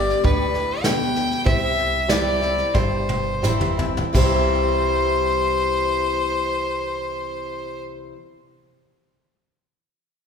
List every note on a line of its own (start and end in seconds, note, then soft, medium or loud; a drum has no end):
0.00 0.12 G1 medium
0.00 0.18 G2 medium
0.00 0.21 D3 soft
0.00 0.22 G3 medium
0.00 0.22 B3 medium
0.00 0.22 G4 medium
0.00 0.24 D5 medium
0.10 snare soft
0.23 1.33 D2 medium
0.23 0.81 A2 medium
0.23 0.62 D4 medium
0.23 0.62 G4 medium
0.23 0.85 B4 medium
0.23 0.63 D5 medium
0.23 kick loud
0.23 snare soft
0.54 snare soft
0.84 1.43 B2 medium
0.84 1.24 D4 medium
0.84 1.24 G4 medium
0.84 1.24 B4 medium
0.84 1.45 G5 medium
0.84 snare loud
0.84 hi-hat pedal medium
1.15 snare soft
1.31 snare soft
1.45 2.61 C2 medium
1.45 2.68 C3 medium
1.45 1.86 E4 medium
1.45 1.86 G4 medium
1.45 1.86 C5 medium
1.45 2.11 E5 loud
1.45 kick loud
1.45 snare soft
1.78 snare soft
2.08 2.40 E3 medium
2.08 2.41 G3 medium
2.08 2.41 C4 medium
2.08 2.50 E4 medium
2.08 2.40 E4 soft
2.08 2.50 G4 medium
2.08 2.51 D5 medium
2.08 2.76 D5 medium
2.08 snare loud
2.08 hi-hat pedal medium
2.41 2.74 C4 soft
2.41 2.73 E4 medium
2.41 snare soft
2.58 snare soft
2.74 3.99 G1 medium
2.74 4.07 G2 medium
2.74 3.18 E4 medium
2.74 3.18 G4 medium
2.74 3.78 C5 medium
2.74 3.18 D5 medium
2.74 kick loud
2.74 snare medium
3.09 high tom medium
3.42 3.76 E3 medium
3.42 3.77 G3 medium
3.42 3.77 C4 medium
3.42 3.88 E4 medium
3.42 3.76 E4 medium
3.42 3.88 G4 medium
3.42 3.88 C5 medium
3.42 hi-hat pedal medium
3.42 mid tom medium
3.61 mid tom medium
3.77 4.13 C4 soft
3.77 4.12 E4 soft
3.77 floor tom medium
3.97 floor tom medium
4.13 8.11 C2 medium
4.13 8.14 C3 medium
4.13 8.15 E3 medium
4.13 8.15 G3 medium
4.13 8.16 C4 medium
4.13 8.10 E4 medium
4.13 8.17 E4 medium
4.13 8.12 G4 medium
4.13 7.83 C5 medium
4.13 kick loud
4.13 crash medium
4.17 8.14 C5 medium